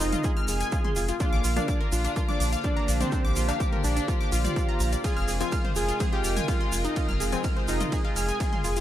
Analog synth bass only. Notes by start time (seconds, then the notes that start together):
0.00 F1
0.48 F1
0.96 F1
1.33 A#1
1.44 A#1
1.92 A#1
2.40 A#1
2.88 A#1
3.25 A#1
3.36 A#1
3.84 A#1
4.32 A#1
4.80 A#1
5.17 F1
5.28 F1
5.76 F1
6.24 F1
6.72 F1
7.09 F1
7.20 F1
7.68 F1
8.16 F1
8.64 F1